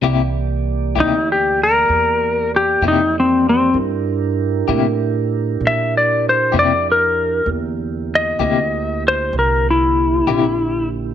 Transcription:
X:1
M:12/8
L:1/8
Q:3/8=64
K:Cmix
V:1 name="Electric slide guitar"
z3 _E G B3 G E C C | z6 e d c d B2 | z2 _e3 c B =E4 z |]
V:2 name="Tonewheel organ"
[E,B,Gd]12 | [DEGB]12 | [D,B,EG]12 |]
V:3 name="Clean electric guitar"
[C,B,EG] z2 [C,B,EG] z4 z [C,B,EG] z2 | z3 [C,B,EG] z4 z [C,B,EG] z2 | z3 [C,B,EG] z4 z [C,B,EG] z2 |]
V:4 name="Upright bass" clef=bass
C,,3 D,,3 E,,3 F,,3 | G,,3 A,,3 B,,3 F,,3 | E,,3 D,,3 C,,3 B,,,3 |]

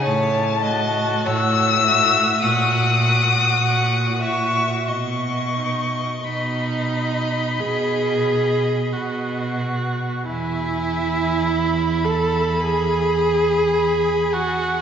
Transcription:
X:1
M:4/4
L:1/8
Q:1/4=50
K:E
V:1 name="Violin"
a2 e'2 d'3 c' | c'2 b4- b z | e3 a g3 f |]
V:2 name="Violin"
c d c e f2 f e | d6- d z | g2 b4 b g |]
V:3 name="Viola"
z F2 F F F2 F | z D D2 G2 F2 | E3 A G3 F |]
V:4 name="Cello" clef=bass
A,,2 A,,2 ^A,,2 A,,2 | B,,2 B,,2 B,,2 B,,2 | E,,8 |]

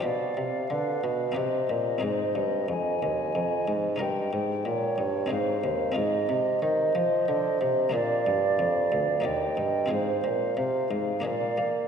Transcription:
X:1
M:3/4
L:1/8
Q:1/4=91
K:Ablyd
V:1 name="Recorder"
f4 e2 | e2 a4 | g3 z f2 | [K:Fdor] e2 e4 |
f4 g2 | f4 f z |]
V:2 name="Flute"
d2 =B2 c2 | c2 e4- | e z _d2 c2 | [K:Fdor] e2 c4 |
d4 e2 | c2 c z d2 |]
V:3 name="Harpsichord"
[DFG]4 [CEG]2 | [CEA]6 | [_DEB]4 [CEA]2 | [K:Fdor] [CEF]6 |
[B,DA]4 [B,EG]2 | [CFA]4 [B,DA]2 |]
V:4 name="Harpsichord" clef=bass
=B,, C, D, B,, C, _B,, | A,, G,, F,, E,, F,, A,, | G,, A,, B,, G,, A,, E,, | [K:Fdor] A,, C, E, F, D, C, |
B,, G,, F,, D,, E,, G,, | A,, B,, C, A,, B,, B, |]
V:5 name="Bassoon" clef=bass
=B,, C, D, B,, C, _B,, | A,, G,, F,, E,, F,, A,, | G,, A,, B,, G,, A,, E,, | [K:Fdor] A,, C, E, F, D, C, |
B,, G,, F,, D,, E,, G,, | A,, B,, C, A,, B,, B, |]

